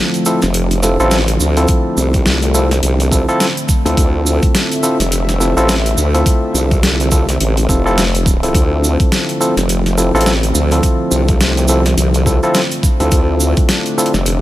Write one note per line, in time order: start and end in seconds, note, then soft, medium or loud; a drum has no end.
0.00 14.41 D3 medium
0.00 3.97 F3 medium
0.00 14.41 A3 medium
0.00 0.23 C4 medium
0.00 14.41 C4 medium
0.00 0.23 E4 medium
0.00 0.23 F4 medium
0.00 0.23 A4 loud
0.14 closed hi-hat soft
0.14 shaker soft
0.26 0.40 C4 medium
0.26 0.40 E4 medium
0.26 0.40 F4 medium
0.26 0.40 A4 medium
0.26 shaker loud
0.42 0.97 F1 loud
0.42 snare medium
0.42 shaker soft
0.54 closed hi-hat medium
0.54 shaker medium
0.71 closed hi-hat soft
0.71 shaker soft
0.83 0.97 C4 medium
0.83 0.97 E4 medium
0.83 0.97 F4 medium
0.83 0.97 A4 medium
0.83 snare soft
0.83 shaker loud
1.00 1.38 A1 loud
1.00 1.17 C4 loud
1.00 1.17 E4 medium
1.00 1.17 F4 medium
1.00 1.17 A4 loud
1.00 shaker soft
1.11 snare loud
1.11 closed hi-hat medium
1.11 shaker medium
1.28 closed hi-hat medium
1.28 shaker soft
1.40 1.67 D2 loud
1.40 shaker loud
1.57 2.52 C4 medium
1.57 2.52 E4 medium
1.57 2.52 F4 medium
1.57 2.52 A4 medium
1.57 closed hi-hat soft
1.57 shaker soft
1.68 kick loud
1.68 closed hi-hat medium
1.68 shaker medium
1.97 2.81 C2 loud
1.97 shaker medium
2.14 kick loud
2.14 closed hi-hat soft
2.14 shaker soft
2.26 snare loud
2.26 shaker medium
2.42 closed hi-hat soft
2.42 shaker soft
2.54 2.68 C4 medium
2.54 2.68 E4 medium
2.54 2.68 F4 medium
2.54 2.68 A4 medium
2.54 shaker loud
2.71 snare medium
2.71 closed hi-hat medium
2.71 shaker soft
2.83 3.26 C2 loud
2.83 closed hi-hat medium
2.83 shaker medium
3.00 closed hi-hat soft
3.00 shaker soft
3.12 3.25 C4 medium
3.12 3.25 E4 medium
3.12 3.25 F4 medium
3.12 3.25 A4 medium
3.12 kick medium
3.12 shaker loud
3.29 3.46 C4 medium
3.29 3.46 E4 medium
3.29 3.46 F4 medium
3.29 3.46 A4 loud
3.29 shaker soft
3.40 snare loud
3.40 closed hi-hat medium
3.40 shaker medium
3.57 closed hi-hat medium
3.57 shaker soft
3.69 kick loud
3.69 shaker loud
3.85 3.95 D2 medium
3.85 4.80 C4 medium
3.85 4.80 E4 medium
3.85 4.80 F4 medium
3.85 4.80 A4 medium
3.85 closed hi-hat soft
3.85 shaker soft
3.97 4.40 D2 loud
3.97 8.54 E5 medium
3.97 kick loud
3.97 closed hi-hat medium
3.97 shaker medium
4.26 shaker medium
4.42 kick loud
4.42 closed hi-hat soft
4.42 shaker soft
4.55 snare loud
4.55 closed hi-hat medium
4.55 shaker medium
4.72 closed hi-hat soft
4.72 shaker soft
4.83 4.97 C4 medium
4.83 4.97 E4 medium
4.83 4.97 F4 medium
4.83 4.97 A4 medium
4.83 shaker loud
5.00 5.54 F1 loud
5.00 snare medium
5.00 closed hi-hat medium
5.00 shaker soft
5.12 closed hi-hat medium
5.12 shaker medium
5.29 snare soft
5.29 closed hi-hat soft
5.29 shaker soft
5.40 5.54 C4 medium
5.40 5.54 E4 medium
5.40 5.54 F4 medium
5.40 5.54 A4 medium
5.40 shaker medium
5.57 5.95 A1 loud
5.57 5.74 C4 loud
5.57 5.74 E4 medium
5.57 5.74 F4 medium
5.57 5.74 A4 loud
5.57 shaker soft
5.69 snare loud
5.69 closed hi-hat medium
5.69 shaker medium
5.86 closed hi-hat medium
5.86 shaker soft
5.97 6.24 D2 loud
5.97 shaker loud
6.14 7.09 C4 medium
6.14 7.09 E4 medium
6.14 7.09 F4 medium
6.14 7.09 A4 medium
6.14 closed hi-hat soft
6.14 shaker soft
6.26 kick loud
6.26 closed hi-hat medium
6.26 shaker medium
6.54 7.38 C2 loud
6.54 shaker loud
6.71 kick loud
6.71 closed hi-hat soft
6.71 shaker soft
6.83 snare loud
6.83 closed hi-hat medium
6.83 shaker medium
7.00 closed hi-hat soft
7.00 shaker soft
7.11 7.26 C4 medium
7.11 7.26 E4 medium
7.11 7.26 F4 medium
7.11 7.26 A4 medium
7.11 kick medium
7.11 shaker medium
7.29 snare medium
7.29 closed hi-hat medium
7.29 shaker soft
7.40 7.67 A1 loud
7.40 closed hi-hat medium
7.40 shaker soft
7.57 closed hi-hat soft
7.57 shaker soft
7.69 8.53 F1 loud
7.69 7.83 C4 medium
7.69 7.83 E4 medium
7.69 7.83 F4 medium
7.69 7.83 A4 medium
7.69 kick medium
7.69 shaker medium
7.86 8.03 C4 loud
7.86 8.03 E4 medium
7.86 8.03 F4 medium
7.86 8.03 A4 loud
7.86 shaker soft
7.98 snare loud
7.98 closed hi-hat medium
7.98 shaker medium
8.15 closed hi-hat medium
8.15 shaker soft
8.26 kick loud
8.26 shaker loud
8.43 9.38 C4 medium
8.43 9.38 E4 medium
8.43 9.38 F4 medium
8.43 9.38 A4 medium
8.43 closed hi-hat soft
8.43 shaker soft
8.54 8.97 D2 medium
8.54 13.11 F3 medium
8.54 kick loud
8.54 closed hi-hat medium
8.54 shaker medium
8.84 shaker medium
9.00 kick loud
9.00 closed hi-hat soft
9.00 shaker soft
9.12 snare loud
9.12 closed hi-hat medium
9.12 shaker medium
9.29 closed hi-hat soft
9.29 shaker soft
9.40 9.54 C4 medium
9.40 9.54 E4 medium
9.40 9.54 F4 medium
9.40 9.54 A4 medium
9.40 shaker loud
9.57 10.11 F1 loud
9.57 snare medium
9.57 closed hi-hat medium
9.57 shaker soft
9.69 closed hi-hat medium
9.69 shaker medium
9.86 snare soft
9.86 closed hi-hat soft
9.86 shaker soft
9.98 10.11 C4 medium
9.98 10.11 E4 medium
9.98 10.11 F4 medium
9.98 10.11 A4 medium
9.98 shaker loud
10.14 10.52 A1 loud
10.14 10.31 C4 loud
10.14 10.31 E4 medium
10.14 10.31 F4 medium
10.14 10.31 A4 loud
10.14 shaker soft
10.21 closed hi-hat medium
10.26 snare loud
10.26 shaker medium
10.43 closed hi-hat medium
10.43 shaker soft
10.54 10.81 D2 loud
10.54 shaker loud
10.71 11.66 C4 medium
10.71 11.66 E4 medium
10.71 11.66 F4 medium
10.71 11.66 A4 medium
10.71 closed hi-hat soft
10.71 shaker soft
10.83 kick loud
10.83 closed hi-hat medium
10.83 shaker medium
11.11 11.95 C2 loud
11.11 shaker medium
11.28 kick loud
11.28 closed hi-hat soft
11.28 shaker soft
11.41 snare loud
11.41 closed hi-hat medium
11.41 shaker soft
11.57 closed hi-hat soft
11.57 shaker soft
11.68 11.83 C4 medium
11.68 11.83 E4 medium
11.68 11.83 F4 medium
11.68 11.83 A4 medium
11.68 shaker medium
11.86 snare medium
11.86 closed hi-hat medium
11.86 shaker soft
11.97 12.40 C2 medium
11.97 closed hi-hat medium
11.97 shaker medium
12.14 closed hi-hat soft
12.14 shaker soft
12.26 12.40 C4 medium
12.26 12.40 E4 medium
12.26 12.40 F4 medium
12.26 12.40 A4 medium
12.26 kick medium
12.26 shaker medium
12.43 12.60 C4 loud
12.43 12.60 E4 medium
12.43 12.60 F4 medium
12.43 12.60 A4 loud
12.43 shaker soft
12.54 snare loud
12.54 closed hi-hat medium
12.54 shaker medium
12.71 closed hi-hat soft
12.71 shaker soft
12.83 kick loud
12.83 shaker loud
13.00 13.10 D2 loud
13.00 13.95 C4 medium
13.00 13.95 E4 medium
13.00 13.95 F4 medium
13.00 13.95 A4 loud
13.00 closed hi-hat soft
13.00 shaker soft
13.11 13.54 D2 loud
13.11 14.41 D4 medium
13.11 kick loud
13.11 closed hi-hat medium
13.11 shaker soft
13.40 shaker medium
13.57 kick loud
13.57 closed hi-hat soft
13.57 shaker soft
13.69 snare loud
13.69 closed hi-hat medium
13.69 shaker soft
13.86 closed hi-hat soft
13.86 shaker soft
13.98 14.11 C4 medium
13.98 14.11 E4 medium
13.98 14.11 F4 medium
13.98 14.11 A4 medium
13.98 shaker loud
14.06 closed hi-hat medium
14.14 14.41 F1 loud
14.14 snare medium
14.14 shaker soft
14.26 closed hi-hat medium
14.26 shaker medium